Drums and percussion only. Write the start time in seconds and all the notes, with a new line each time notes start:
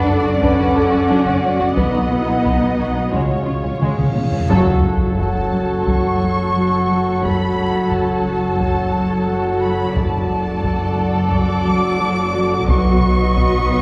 0.42 taiko
1.77 taiko
2.45 taiko
3.13 taiko
3.82 taiko mid
3.99 taiko mid
4.16 taiko high
4.33 taiko low
4.50 taiko
5.18 taiko
5.87 taiko
7.23 taiko
7.91 taiko
8.60 taiko
9.96 taiko
10.64 taiko
11.32 taiko
12.68 taiko
13.36 taiko